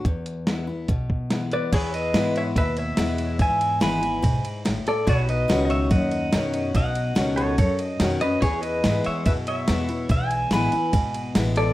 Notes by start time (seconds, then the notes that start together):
0.05 E2, kick, closed hi-hat
0.26 closed hi-hat
0.47 E3 G#3 B3 E4, snare, closed hi-hat
0.67 B3 E4
0.88 B1 B2, kick, closed hi-hat
1.10 kick
1.30 E3 G#3 B3 E4, snare, closed hi-hat
1.52 B4 D5, closed hi-hat
1.72 E2 E4 G#4 B4 C#5, kick, crash, ride
1.94 B4 D#5, ride
2.14 G#2 E3 G#3 B3 E4, snare, ride
2.36 C#5 E5, ride
2.56 D#2 B2 B4 E5, kick, ride
2.77 C#5 E5, ride
2.97 E2 E3 G#3 B3 E4, snare, ride
3.18 ride
3.39 E2 G#2 E5 G#5, kick, ride
3.61 ride
3.80 G#1 E3 G#3 B3 E4 G#5 B5, snare, ride
4.01 B3 E4, ride
4.22 B1 G#2, kick, ride
4.44 muted upright bass stroke, ride
4.65 G#1 A2, snare, ride
4.86 A4 D5, muted upright bass stroke, ride
5.07 B1 B2 E4 F#4 G#4 B4 C#5, kick, ride
5.27 D#4 B4 D#5, ride
5.33 F#4
5.48 C#2 B2 D#3 C#4 F#4, snare, ride
5.65 D#5
5.70 C#5 E5, ride
5.91 D#2 F#2 D#5 F#5, kick, ride
6.11 ride
6.33 F#2 B2 D#3 C#4 F#4, snare, ride
6.54 ride
6.74 B1 B2 D#5 F#5, kick, ride
6.95 ride
7.15 C#2 B2 D#3 C#4 F#4, snare, ride
7.36 A4 C#5, ride
7.58 F#2 A4 C#5, kick, ride
7.79 D#5, ride
8.00 F2 B2 D#3 C#4 F#4, snare, ride
8.21 C#4 F#4 B4 D#5, ride
8.41 E2 E4 G#4 B4 C#5, kick, ride
8.62 B4 D#5, ride
8.84 G#2 E3 G#3 B3 E4, snare, ride
9.04 C#5 E5, muted upright bass stroke, ride
9.26 F#2 B2 B4 E5, kick, ride
9.47 C#5 E5, ride
9.68 E2 E3 G#3 B3 E4, snare, ride
9.89 B3 E4, ride
10.09 B1 E2 E5 G#5, kick, ride
10.31 ride
10.51 A1 E3 G#3 B3 E4 G#5 B5, snare, ride
10.72 B3 E4, muted upright bass stroke, ride
10.93 G#1 B2, kick, ride
11.14 ride
11.35 A1 E3 G#3 B3 E4, snare, ride
11.56 A4 D5, ride